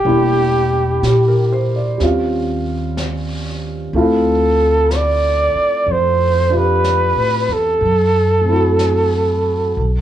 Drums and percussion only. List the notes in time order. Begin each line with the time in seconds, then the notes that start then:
0.05 brush sweep
1.03 brush sweep, snare, hi-hat pedal
2.00 brush sweep, snare
2.97 brush sweep, snare, hi-hat pedal
3.94 brush sweep
4.91 brush sweep, snare, hi-hat pedal
5.87 brush sweep
6.84 brush sweep, snare, hi-hat pedal
7.81 brush sweep
8.79 brush sweep, snare, hi-hat pedal
9.78 brush sweep